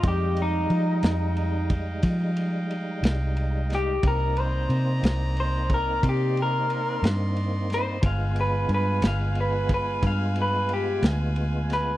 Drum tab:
RD |xxxxxxxxxxxx|xxxxxxxxxxxx|xxxxxxxxxxxx|
SD |---o-----o-o|---o-----o-o|---o-----o-o|
BD |o----oo-----|o----oo-----|o----oo-----|